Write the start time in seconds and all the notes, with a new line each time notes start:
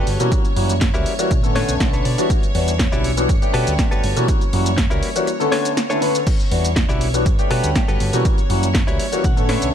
Already playing: F#4 G4 A4 B4 C#5
0.07 G1, open hi-hat
0.19 B2 E3 G3 A#3 C#4 F#4, closed hi-hat, shaker
0.32 kick, closed hi-hat, shaker
0.45 muted fingered electric bass stroke, closed hi-hat, shaker
0.56 F#2 E3 G3 A#3 C#4 F#4, open hi-hat
0.69 closed hi-hat, shaker
0.81 muted clean electric guitar stroke, kick, snare, closed hi-hat, shaker
0.94 C#2 E3 G3 A#3 C#4 E4 F#4 G4 A#4, closed hi-hat, shaker
1.06 open hi-hat
1.19 E3 G3 A#3 C#4 F#4, closed hi-hat, shaker
1.31 B2, muted clean electric guitar stroke, kick, closed hi-hat, shaker
1.43 A2 D3 A3 B3 C#4 A4, closed hi-hat, shaker
1.56 D4 A4 B4 C#5, snare, open hi-hat
1.69 B1, closed hi-hat, shaker
1.80 B1 D3 A3 B3 C#4 A4 A5, kick, snare, closed hi-hat, shaker
1.93 D4 A4 B4 C#5, closed hi-hat, shaker
2.05 B2 D5, open hi-hat
2.18 E3 G3 B3 D4 F#4, closed hi-hat, shaker
2.30 kick, closed hi-hat, shaker
2.43 closed hi-hat, shaker
2.54 E2 E3 G3 B3 D4 F#4, open hi-hat
2.68 closed hi-hat, shaker
2.79 muted clean electric guitar stroke, kick, snare, closed hi-hat, shaker
2.92 B1 E3 G3 B3 D4 E4 F#4 G4 D5, closed hi-hat, shaker
3.04 open hi-hat
3.17 E3 G3 B3 D4 F#4, closed hi-hat, shaker
3.29 G2, muted clean electric guitar stroke, kick, closed hi-hat, shaker
3.42 G3 A3 B3 D4 G4, muted fingered electric bass stroke, closed hi-hat, shaker
3.54 B2 F#4 G4 A4 B4, open hi-hat
3.67 D2, closed hi-hat, shaker
3.78 G3 A3 B3 D4 G4, kick, snare, closed hi-hat, shaker
3.91 G1 F#4 G4 A4 B4, closed hi-hat, shaker
4.04 G1, open hi-hat
4.16 B2 E3 G3 A#3 C#4 F#4, closed hi-hat, shaker
4.28 kick, closed hi-hat, shaker
4.41 muted fingered electric bass stroke, closed hi-hat, shaker
4.53 F#2 E3 G3 A#3 C#4 F#4, open hi-hat
4.66 closed hi-hat, shaker
4.77 muted clean electric guitar stroke, kick, snare, closed hi-hat, shaker
4.90 C#2 E3 G3 A#3 C#4 E4 F#4 G4 A#4, closed hi-hat, shaker
5.03 open hi-hat
5.15 E3 G3 A#3 C#4 F#4, closed hi-hat, shaker
5.27 muted clean electric guitar stroke, closed hi-hat, shaker
5.40 D3 A3 B3 C#4 A4, closed hi-hat, shaker
5.52 D4 A4 B4 C#5, snare, open hi-hat
5.65 closed hi-hat, shaker
5.77 snare, closed hi-hat, shaker
5.90 D3 A3 B3 C#4 D4 E4 A4 B4 C#5, closed hi-hat, shaker
6.01 D3 A3 B3 C#4 B4, open hi-hat
6.15 closed hi-hat, shaker
6.27 C#5, kick, closed hi-hat, crash, shaker
6.40 closed hi-hat, shaker
6.51 E2 E3 G3 B3 D4 F#4, open hi-hat
6.65 closed hi-hat, shaker
6.76 muted clean electric guitar stroke, kick, snare, closed hi-hat, shaker
6.89 B1 E3 G3 B3 D4 E4 F#4 G4 D5, closed hi-hat, shaker
7.01 open hi-hat
7.14 E3 G3 B3 D4 F#4, closed hi-hat, shaker
7.26 G2, muted clean electric guitar stroke, kick, closed hi-hat, shaker
7.39 G3 A3 B3 D4 G4, muted fingered electric bass stroke, closed hi-hat, shaker
7.51 B2 F#4 G4 A4 B4, open hi-hat
7.64 D2, closed hi-hat, shaker
7.75 A3 B3 D4 G4, kick, snare, closed hi-hat, shaker
7.88 G1 F#4 G4 A4 B4, closed hi-hat, shaker
8.00 G1, open hi-hat
8.13 B2 E3 G3 A#3 C#4 F#4, closed hi-hat, shaker
8.25 kick, closed hi-hat, shaker
8.38 muted fingered electric bass stroke, closed hi-hat, shaker
8.49 F#2 E3 G3 A#3 C#4 F#4, open hi-hat
8.63 closed hi-hat, shaker
8.74 muted clean electric guitar stroke, kick, snare, closed hi-hat, shaker
8.87 C#2 E3 G3 A#3 C#4 E4 F#4 G4 C#5, closed hi-hat, shaker
8.99 C#5, open hi-hat
9.12 E3 G3 A#3 C#4 F#4, closed hi-hat, shaker
9.24 B2 F#5, muted clean electric guitar stroke, kick, closed hi-hat, shaker
9.37 A2 D3 A3 B3 C#4 A4, closed hi-hat, shaker
9.49 D4 A4 B4 C#5, snare, open hi-hat
9.62 B1, closed hi-hat, shaker